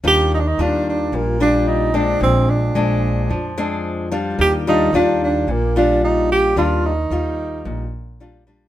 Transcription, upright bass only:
\new Staff \with { instrumentName = "Upright bass" } { \clef bass \time 4/4 \key ees \major \tempo 4 = 110 ees,4 ees,4 bes,,2 | bes,,4 bes,,4 f,2 | ees,4 ees,4 bes,,2 | ees,4 ees,4 bes,,2 | }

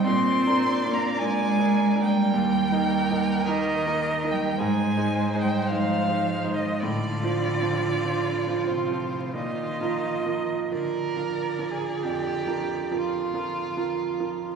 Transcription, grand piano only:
\new Staff \with { instrumentName = "Grand piano" } { \time 4/4 \key bes \mixolydian \tempo 4 = 51 \tuplet 3/2 { bes,8 <bes d' bes'>8 <bes d' bes'>8 <bes d' bes'>8 <bes d' bes'>8 <bes d' bes'>8 ees,8 <bes ees' bes'>8 <bes ees' bes'>8 <bes ees' bes'>8 <bes ees' bes'>8 <bes ees' bes'>8 } | \tuplet 3/2 { aes,8 <aes ees' c''>8 <aes ees' c''>8 <aes ees' c''>8 <aes ees' c''>8 <aes ees' c''>8 a,8 <f f' c''>8 <f f' c''>8 <f f' c''>8 <f f' c''>8 <f f' c''>8 } | \tuplet 3/2 { bes,8 <f f' bes'>8 <f f' bes'>8 <f f' bes'>8 <f f' bes'>8 <f f' bes'>8 f,8 <f f' bes'>8 <f f' bes'>8 <f f' bes'>8 <f f' bes'>8 <f f' bes'>8 } | }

